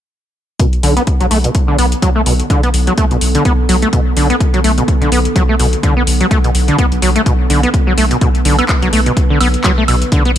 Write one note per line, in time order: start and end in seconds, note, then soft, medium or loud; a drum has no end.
0.59 0.67 B2 medium
0.59 10.38 D3 medium
0.59 10.38 B3 medium
0.59 8.17 A4 medium
0.59 kick loud
0.59 closed hi-hat medium
0.73 closed hi-hat soft
0.83 0.99 B1 medium
0.83 0.94 D3 loud
0.83 open hi-hat medium
0.97 1.02 B3 loud
0.97 closed hi-hat soft
1.07 kick medium
1.07 closed hi-hat medium
1.20 1.27 B1 medium
1.20 1.26 F#3 loud
1.20 closed hi-hat soft
1.31 1.47 B1 medium
1.31 1.38 A3 loud
1.31 open hi-hat loud
1.44 1.50 B2 medium
1.44 closed hi-hat soft
1.55 kick loud
1.55 closed hi-hat medium
1.68 1.77 D3 loud
1.79 1.94 B1 medium
1.79 1.86 B3 loud
1.79 open hi-hat loud
1.92 closed hi-hat medium
2.02 2.10 F#3 medium
2.02 kick medium
2.02 closed hi-hat medium
2.16 2.22 A3 loud
2.26 2.42 B1 medium
2.26 2.34 B2 medium
2.26 open hi-hat loud
2.40 closed hi-hat soft
2.50 2.61 D3 loud
2.50 kick loud
2.50 closed hi-hat medium
2.63 2.69 B3 loud
2.63 closed hi-hat soft
2.74 2.90 B1 medium
2.74 open hi-hat loud
2.87 2.93 F#3 loud
2.87 closed hi-hat soft
2.98 3.05 A3 medium
2.98 kick loud
2.98 closed hi-hat medium
3.11 3.17 B1 medium
3.11 3.17 B2 medium
3.11 closed hi-hat soft
3.21 3.37 B1 medium
3.21 open hi-hat loud
3.35 3.44 D3 loud
3.35 closed hi-hat soft
3.45 3.53 B3 loud
3.45 kick loud
3.45 closed hi-hat medium
3.69 3.85 B1 medium
3.69 3.76 F#3 loud
3.69 open hi-hat loud
3.82 3.88 A3 loud
3.82 closed hi-hat soft
3.93 4.00 B2 medium
3.93 kick loud
3.93 closed hi-hat medium
4.17 4.32 B1 medium
4.17 4.28 D3 medium
4.17 open hi-hat loud
4.30 4.36 B3 loud
4.30 closed hi-hat soft
4.40 kick loud
4.40 closed hi-hat medium
4.54 4.60 F#3 loud
4.54 closed hi-hat soft
4.64 4.80 B1 loud
4.64 4.72 A3 loud
4.64 open hi-hat loud
4.78 4.83 B2 medium
4.78 closed hi-hat soft
4.88 kick loud
4.88 closed hi-hat medium
5.02 5.08 B1 loud
5.02 5.10 D3 loud
5.02 closed hi-hat soft
5.12 5.28 B1 medium
5.12 5.19 B3 loud
5.12 open hi-hat loud
5.25 closed hi-hat soft
5.36 5.43 F#3 loud
5.36 kick loud
5.36 closed hi-hat medium
5.49 5.55 A3 loud
5.60 5.75 B1 medium
5.60 5.67 B2 medium
5.60 open hi-hat loud
5.73 closed hi-hat soft
5.83 5.94 D3 loud
5.83 kick loud
5.83 closed hi-hat medium
5.97 6.03 B3 loud
6.07 6.23 B1 medium
6.07 open hi-hat loud
6.21 6.26 F#3 loud
6.21 closed hi-hat soft
6.31 6.38 A3 medium
6.31 kick loud
6.31 closed hi-hat medium
6.44 6.50 B2 medium
6.44 closed hi-hat soft
6.55 6.70 B1 medium
6.55 open hi-hat loud
6.68 6.77 D3 loud
6.68 closed hi-hat soft
6.79 6.86 B3 loud
6.79 kick loud
6.79 closed hi-hat medium
6.92 6.98 B1 loud
6.92 closed hi-hat soft
7.02 7.18 B1 medium
7.02 7.10 F#3 loud
7.02 open hi-hat loud
7.16 7.22 A3 medium
7.16 closed hi-hat soft
7.26 7.34 B2 medium
7.26 kick loud
7.26 closed hi-hat medium
7.50 7.66 B1 loud
7.50 7.61 D3 loud
7.50 open hi-hat loud
7.63 7.69 B3 loud
7.63 closed hi-hat soft
7.74 kick loud
7.74 closed hi-hat medium
7.87 7.93 F#3 loud
7.98 8.13 B1 medium
7.98 8.05 A3 loud
7.98 open hi-hat loud
8.11 8.17 B2 medium
8.11 closed hi-hat soft
8.21 8.29 B2 medium
8.21 10.38 B4 medium
8.21 kick loud
8.21 closed hi-hat medium
8.35 closed hi-hat soft
8.45 8.61 B1 loud
8.45 8.56 D3 loud
8.45 open hi-hat loud
8.59 8.64 B3 loud
8.59 closed hi-hat soft
8.59 high woodblock medium
8.69 kick loud
8.69 clap loud
8.69 closed hi-hat medium
8.82 8.89 B1 medium
8.82 8.88 F#3 loud
8.82 closed hi-hat soft
8.93 9.09 B1 medium
8.93 9.00 A3 loud
8.93 open hi-hat loud
9.06 9.12 B2 medium
9.06 closed hi-hat soft
9.17 kick loud
9.17 closed hi-hat medium
9.30 9.39 D3 loud
9.41 9.56 B1 medium
9.41 9.48 B3 loud
9.41 open hi-hat loud
9.41 high woodblock medium
9.54 closed hi-hat soft
9.64 9.72 F#3 loud
9.64 kick loud
9.64 clap loud
9.64 closed hi-hat medium
9.78 9.84 A3 loud
9.88 10.04 B1 medium
9.88 9.96 B2 medium
9.88 open hi-hat loud
9.88 high woodblock medium
10.02 closed hi-hat soft
10.12 10.23 D3 medium
10.12 kick loud
10.12 closed hi-hat medium
10.25 10.31 B3 loud
10.25 closed hi-hat soft